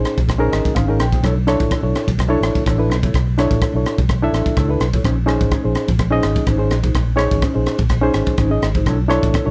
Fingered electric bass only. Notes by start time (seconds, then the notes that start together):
0.17 A#1
0.52 G#1
0.65 muted fingered electric bass stroke
0.76 G#1
1.01 A#1
1.23 B1
1.60 A1
1.83 B1
2.07 B1
2.41 A1
2.55 muted fingered electric bass stroke
2.66 A1
2.89 B1
3.14 B1
3.51 A1
3.74 B1
3.98 B1
4.33 A1
4.45 muted fingered electric bass stroke
4.57 C#2
4.80 B1
5.04 A#1
5.41 G#1
5.65 A#1
5.88 A#1
6.24 G#1
6.36 muted fingered electric bass stroke
6.47 G#1
6.71 A#1
6.94 A#1
7.31 G#1
7.56 A#1
7.78 A#1
8.14 G#1
8.27 muted fingered electric bass stroke
8.38 G#1
8.62 G#1
8.85 B1
9.22 A1
9.47 B1